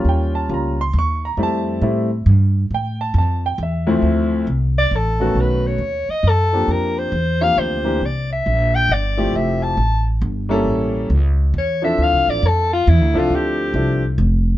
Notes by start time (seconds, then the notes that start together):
Already playing: G3 A#3 C#4 F4
0.05 D#2
0.09 G5
0.35 A5
0.49 C#2 G3 A#3 C#4 F4
0.54 A#5
0.81 C6
0.93 D#2
0.99 C#6
1.25 A#5
1.37 F2 G3 A3 C4 E4
1.43 A5
1.82 A2 G3 A3 C4 E4
2.26 G2
2.71 A2 G5
3.01 A5
3.14 F2
3.18 A5
3.46 G5
3.58 E2
3.63 E5
3.87 D2 F3 A3 C4 E4
4.02 D2
4.47 C2
4.78 D5
4.91 A1
4.96 A4
5.20 D#3 A3 B3 C#4 F#4
5.35 B1
5.41 B4
5.67 C#5
5.78 D#2
6.09 D#5, muted upright bass stroke
6.23 F#2
6.29 A4
6.53 F3 A#3 C4 D4 G4
6.68 F2
6.72 A#4
6.99 C5
7.12 E2
7.41 F3 A#3 C4 D4 G4 F5
7.57 D2 C5
7.84 E3 A#3 C4 D4 G4
8.01 C2
8.06 D5
8.33 E5
8.46 A#1
8.76 G5
8.89 G1
8.93 D5
9.17 F3 A3 C4 E4 G4
9.33 F1 E5
9.63 A5
9.77 A1
10.22 G1
10.49 G3 A#3 C#4 E4 A4
10.64 A1
11.10 C#2
11.54 E2
11.58 C#5
11.82 F3 C4 D4 E4 A4 E5
11.98 D2
12.03 F5
12.12 C2
12.27 A1 D5
12.43 F2
12.47 A4
12.73 F4
12.87 E2 E4
13.01 D2
13.14 C2 F3 C4 D4 E4 A4
13.18 F4
13.30 D2
13.36 G4
13.74 C2 F3 C4 D4 E4 A4
14.18 F1